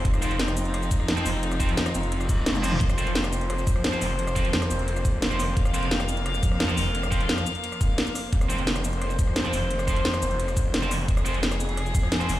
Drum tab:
HH |x-xxxxxxx-x-x-o-|x-xxxxxxx-x-x-o-|x-xxxxxxx-x-x-o-|x-xxxxxxx-x-x-o-|
SH |-xx--xx--xx--xx-|-xx--xx--xx--xx-|-xx--xx--xx--xx-|-xx--xx--xx--xx-|
SD |-r--or--r--ro---|-r--or---r--o-r-|-r--or--r--ro---|-r--or---r--o-r-|
T1 |----------------|------------oo--|----------------|----------------|
T2 |----------------|---------------o|----------------|----------------|
BD |o---------o-----|--o-------o-----|o---------o-----|--o-------o-----|

HH |x-xxxxxxx-x-x-o-|x-xxxxxxx-x-x-o-|x-xxxxxxx-x-x-o-|x-xxxxxxx-x-x-o-|
SH |-xx--xx--xx--xx-|-xx--xx--xx--xx-|-xx--xx--xx--xx-|-xx--xx--xx--xx-|
SD |-r--or--r--ro---|-r--or---r--o-r-|-r--or--r--ro---|-r--or---r--o-r-|
T1 |----------------|----------------|----------------|----------------|
T2 |----------------|----------------|----------------|----------------|
BD |o---------o-----|--o-------o-----|o---------o-----|--o-------o-----|

HH |x-xxxxxxx-x-x-o-|
SH |-xx--xx--xx--xx-|
SD |-r--or--r--ro---|
T1 |----------------|
T2 |----------------|
BD |o---------o-----|